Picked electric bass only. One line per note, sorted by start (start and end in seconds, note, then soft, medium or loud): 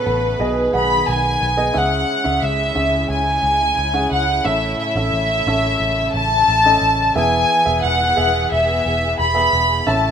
0.07 0.34 A1 medium
0.40 0.68 B1 medium
0.74 1.02 B1 medium
1.08 1.36 B1 medium
1.41 1.69 B1 medium
1.76 2.03 C#2 medium
2.26 2.40 C#2 medium
2.43 2.70 C#2 medium
2.76 3.04 C#2 medium
3.09 3.37 C#2 medium
3.43 3.71 C#2 medium
3.78 4.06 C#2 medium
4.12 4.39 C#2 medium
4.46 4.73 A1 medium
4.96 5.10 A1 medium
5.12 5.40 A1 medium
5.47 5.75 A1 medium
5.80 6.08 A1 medium
6.14 6.42 A1 medium
6.48 6.76 A1 medium
6.82 7.09 A1 medium
7.16 7.44 E1 medium
7.67 7.81 E1 medium
7.84 8.12 E1 medium
8.18 8.45 E1 medium
8.52 8.79 E1 loud
8.86 9.13 E1 medium
9.19 9.47 E1 medium
9.53 9.80 E1 medium
9.87 10.11 A1 medium